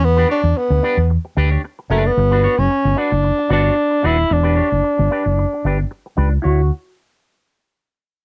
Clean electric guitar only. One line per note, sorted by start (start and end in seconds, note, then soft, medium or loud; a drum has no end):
0.04 muted clean electric guitar stroke soft
0.17 0.27 D4 medium
0.17 0.28 G4 medium
0.17 0.30 B4 medium
0.29 0.40 D4 medium
0.29 0.40 G4 medium
0.29 0.41 C#5 medium
0.44 muted clean electric guitar stroke soft
0.56 muted clean electric guitar stroke soft
0.70 muted clean electric guitar stroke medium
0.83 0.97 D4 medium
0.83 0.98 G4 medium
0.83 0.97 B4 medium
0.98 muted clean electric guitar stroke soft
1.10 muted clean electric guitar stroke soft
1.25 muted clean electric guitar stroke soft
1.37 1.51 D4 medium
1.37 1.50 G4 medium
1.37 1.51 B4 medium
1.51 1.61 D4 medium
1.51 1.61 G4 medium
1.51 1.61 C#5 medium
1.64 muted clean electric guitar stroke soft
1.79 muted clean electric guitar stroke soft
1.90 2.10 D4 medium
1.90 2.04 G4 medium
1.90 2.03 B4 loud
2.04 muted clean electric guitar stroke soft
2.18 muted clean electric guitar stroke soft
2.31 2.42 D4 medium
2.31 2.43 F#4 medium
2.31 2.44 B4 medium
2.43 2.55 D4 medium
2.43 2.55 F#4 medium
2.43 2.55 C#5 medium
2.58 muted clean electric guitar stroke soft
2.71 muted clean electric guitar stroke soft
2.85 muted clean electric guitar stroke soft
2.96 3.11 D4 medium
2.96 3.11 F#4 medium
2.96 3.11 B4 medium
3.12 muted clean electric guitar stroke medium
3.23 muted clean electric guitar stroke soft
3.37 muted clean electric guitar stroke soft
3.49 3.63 D4 medium
3.49 3.63 F#4 loud
3.49 3.63 B4 loud
3.63 3.74 D4 medium
3.63 3.74 F#4 medium
3.63 3.74 C#5 medium
3.75 muted clean electric guitar stroke medium
3.91 muted clean electric guitar stroke soft
4.03 4.18 D4 medium
4.03 4.18 F#4 medium
4.03 4.16 B4 loud
4.18 muted clean electric guitar stroke medium
4.30 muted clean electric guitar stroke soft
4.43 4.54 D4 medium
4.43 4.56 G4 medium
4.43 4.56 B4 medium
4.56 4.68 D4 medium
4.56 4.68 G4 medium
4.56 4.68 C#5 medium
4.71 muted clean electric guitar stroke soft
4.84 muted clean electric guitar stroke soft
4.98 muted clean electric guitar stroke soft
5.11 5.25 D4 medium
5.11 5.24 G4 medium
5.11 5.24 B4 medium
5.25 muted clean electric guitar stroke medium
5.38 muted clean electric guitar stroke medium
5.53 muted clean electric guitar stroke soft
5.65 5.79 D4 medium
5.65 5.79 G4 medium
5.65 5.78 B4 loud
5.79 muted clean electric guitar stroke soft
5.91 muted clean electric guitar stroke soft
6.06 muted clean electric guitar stroke soft
6.17 6.32 D4 medium
6.17 6.30 G4 medium
6.17 6.29 B4 loud
6.30 muted clean electric guitar stroke soft
6.42 6.60 E4 medium
6.42 6.60 F#4 medium
6.42 6.61 C#5 medium